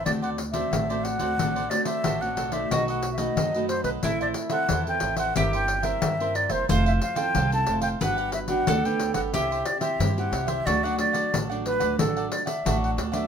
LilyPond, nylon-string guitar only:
\new Staff \with { instrumentName = "Nylon-string guitar" } { \time 4/4 \key d \mixolydian \tempo 4 = 90 << { <a c' fis'>8 r16 <a c' fis'>8 <a c' fis'>8 <a c' fis'>16 <a c' fis'>16 r16 <a c' fis'>8 r16 <a c' fis'>8 <a ees' fis'>16~ | <a ees' fis'>8. <a dis' fis'>8 <a dis' fis'>8. <c' e' a'>8. <c' e' a'>8 <c' e' a'>8. | <c' e' bes'>8. <c' e' bes'>8 <c' e' bes'>8. <c' e' a'>8 r16 <c' e' a'>8 <c' e' a'>8. | <b d' fis'>8. <b d' fis'>8 <b d'>8. <c' e' g'>8. <c' e' g'>8 <c' e' g'>8. |
<fis a d'>16 <fis a d'>16 <fis a d'>8 r16 <fis a d'>8. <fis a d'>8. r16 <fis a d'>8 r16 <fis b d'>16 | } \\ { d4 a,4 d4 a,4 | b,4 fis4 a4 e4 | g4 g4 f4 c4 | g4 d4 c4 g,4 |
d4 a,4 d4 a,4 | } >> }